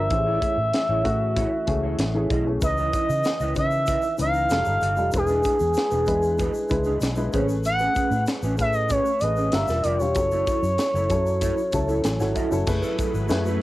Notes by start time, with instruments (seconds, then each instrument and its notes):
Already playing: grand piano F3 A#3 D4 G4 A#4, analog synth lead E5
0.10 fingered electric bass A1, grand piano E3 A3 C#4 G4, muted clean electric guitar stroke, kick, closed hi-hat
0.18 grand piano G#4
0.26 clean electric guitar E4 G#4 C#5
0.41 clean electric guitar E4 G#4 C#5, kick, closed hi-hat
0.58 fingered electric bass A2, muted clean electric guitar stroke
0.74 muted clean electric guitar stroke, snare, closed hi-hat
0.89 fingered electric bass A1, clean electric guitar E4 G#4 C#5
1.04 fingered electric bass A2, grand piano E3 A3 C#4 F#4, muted clean electric guitar stroke, kick, closed hi-hat
1.21 muted clean electric guitar stroke
1.36 clean electric guitar E4 G#4 C#5, kick, closed hi-hat
1.51 muted clean electric guitar stroke
1.67 fingered electric bass C#2, grand piano E3 A3 C#4 G#4, muted clean electric guitar stroke, kick, closed hi-hat
1.83 clean electric guitar E4 G#4 C#5
1.99 fingered electric bass A1, muted clean electric guitar stroke, snare, closed hi-hat
2.14 grand piano E3 A3 C#4 G#4, clean electric guitar E4 G#4 C#5
2.30 fingered electric bass B1, clean electric guitar E4 G#4 D#5, kick, closed hi-hat
2.46 grand piano E3 A3 C#4 G#4, muted clean electric guitar stroke
2.61 fingered electric bass C#2, grand piano E3 C#4 D#4 B4, analog synth lead D#5, muted clean electric guitar stroke, kick, closed hi-hat, shaker
2.77 clean electric guitar E4 B4 D#5, shaker
2.93 clean electric guitar E4 B4 D#5, kick, closed hi-hat, shaker
3.09 fingered electric bass C#3, muted clean electric guitar stroke, shaker
3.24 muted clean electric guitar stroke, snare, closed hi-hat, shaker
3.40 fingered electric bass C#2, clean electric guitar E4 B4 D#5, shaker
3.55 fingered electric bass C#3, grand piano D#3 E3 C#4 B4, analog synth lead E5, muted clean electric guitar stroke, kick, closed hi-hat, shaker
3.71 muted clean electric guitar stroke, shaker
3.86 clean electric guitar E4 B4 D#5, kick, closed hi-hat, shaker
4.02 muted clean electric guitar stroke, shaker
4.18 fingered electric bass C#2, grand piano E3 C#4 D#4 B4, analog synth lead F5, muted clean electric guitar stroke, closed hi-hat, shaker
4.33 clean electric guitar E4 B4 D#5, shaker
4.50 fingered electric bass F1, grand piano G3 D#4 F4 A4, snare, closed hi-hat, shaker
4.65 fingered electric bass G1, grand piano G3 D#4 F4 A4, muted clean electric guitar stroke, shaker
4.81 fingered electric bass G1, clean electric guitar G4 A4 F5, closed hi-hat, shaker
4.96 fingered electric bass F1, grand piano G3 D#4 F4 A4, muted clean electric guitar stroke, shaker
5.11 fingered electric bass E1, grand piano G#3 D4 E4 B4, muted clean electric guitar stroke, kick, closed hi-hat, shaker
5.16 analog synth lead G#4
5.27 clean electric guitar D4 G#4 B4, shaker
5.43 clean electric guitar D4 G#4 B4, kick, closed hi-hat, shaker
5.60 fingered electric bass E2, shaker
5.74 muted clean electric guitar stroke, snare, closed hi-hat, shaker
5.91 fingered electric bass E1, clean electric guitar D4 G#4 B4, shaker
6.06 fingered electric bass E2, grand piano G#3 D4 E4 B4, muted clean electric guitar stroke, kick, closed hi-hat, shaker
6.22 muted clean electric guitar stroke, shaker
6.38 clean electric guitar D4 G#4 B4, kick, closed hi-hat, shaker
6.54 muted clean electric guitar stroke, shaker
6.69 fingered electric bass C#2, grand piano G#3 D4 E4 B4, muted clean electric guitar stroke, kick, closed hi-hat, shaker
6.84 clean electric guitar D4 G#4 B4, shaker
7.01 fingered electric bass B1, muted clean electric guitar stroke, snare, closed hi-hat, shaker
7.16 grand piano G#3 D4 E4 B4, clean electric guitar D4 G#4 B4, shaker
7.33 fingered electric bass A1, grand piano A3 C4 G#4 B4, clean electric guitar C#4 G#4 C#5, kick, closed hi-hat, shaker
7.40 grand piano C#4
7.49 muted clean electric guitar stroke, shaker
7.64 analog synth lead F#5, muted clean electric guitar stroke, closed hi-hat, shaker
7.79 clean electric guitar C#4 G#4 B4, shaker
7.95 clean electric guitar C#4 G#4 B4, kick, closed hi-hat, shaker
8.11 fingered electric bass A2, muted clean electric guitar stroke, shaker
8.27 muted clean electric guitar stroke, snare, closed hi-hat, shaker
8.43 fingered electric bass A1, clean electric guitar C#4 G#4 B4, shaker
8.58 fingered electric bass A2, grand piano A3 C#4 G#4 B4, analog synth lead E5, muted clean electric guitar stroke, kick, closed hi-hat, shaker
8.73 analog synth lead D#5, muted clean electric guitar stroke, shaker
8.89 clean electric guitar C#4 G#4 B4, analog synth lead C#5, kick, closed hi-hat, shaker
9.05 muted clean electric guitar stroke, shaker
9.20 fingered electric bass A1, grand piano A3 C#4 G#4 B4, analog synth lead D#5, muted clean electric guitar stroke, closed hi-hat, shaker
9.36 clean electric guitar C#4 G#4 B4, shaker
9.52 fingered electric bass G1, grand piano G3 D4 F4 A#4, analog synth lead E5, snare, closed hi-hat, shaker
9.68 fingered electric bass E1, grand piano G3 D4 F4 A#4, clean electric guitar F4 A#4 D5, snare, shaker
9.83 fingered electric bass F1, clean electric guitar F4 A#4 E5, analog synth lead D5, closed hi-hat, shaker
9.99 fingered electric bass E1, grand piano G3 D4 F4 G4, analog synth lead C#5, muted clean electric guitar stroke, shaker
10.15 fingered electric bass F#1, grand piano F#3 C#4 E4 A4, muted clean electric guitar stroke, kick, closed hi-hat, shaker
10.31 clean electric guitar E4 A4 C#5, shaker
10.47 clean electric guitar E4 A4 C#5, kick, closed hi-hat, shaker
10.63 fingered electric bass F#2, muted clean electric guitar stroke, shaker
10.78 muted clean electric guitar stroke, snare, closed hi-hat, shaker
10.94 fingered electric bass F#1, clean electric guitar E4 A4 C#5, shaker
11.10 fingered electric bass F#2, grand piano F#3 C#4 E4 A4, muted clean electric guitar stroke, kick, closed hi-hat, shaker
11.26 muted clean electric guitar stroke, shaker
11.41 clean electric guitar E4 A4 C#5, kick, closed hi-hat, shaker
11.57 muted clean electric guitar stroke, shaker
11.72 fingered electric bass C#2, grand piano F#3 C#4 E4 A4 A5, muted clean electric guitar stroke, kick, closed hi-hat, shaker
11.88 clean electric guitar E4 A4 C#5, shaker
12.04 fingered electric bass A1, grand piano G#5, muted clean electric guitar stroke, snare, closed hi-hat, shaker
12.20 fingered electric bass G#1, grand piano F#3 C#4 E4 A4 F#5, clean electric guitar E4 A4 C#5, snare, shaker
12.35 clean electric guitar E4 A4 D#5, grand piano E5, kick, closed hi-hat, shaker
12.51 fingered electric bass F#1, grand piano F#3 C#4 E4 A4, muted clean electric guitar stroke, shaker
12.67 fingered electric bass F#1, string machine F#3 A3 E4 G#4 B4, grand piano A3 E4 G#4 B4, muted clean electric guitar stroke, kick, crash, shaker
12.82 clean electric guitar E4 A4 B4, shaker
12.98 clean electric guitar E4 A4 B4, kick, closed hi-hat, shaker
13.14 fingered electric bass G#1, muted clean electric guitar stroke, shaker
13.29 fingered electric bass F#2, grand piano A3 E4 G#4 B4, muted clean electric guitar stroke, snare, closed hi-hat, shaker
13.46 clean electric guitar E4 A4 B4, shaker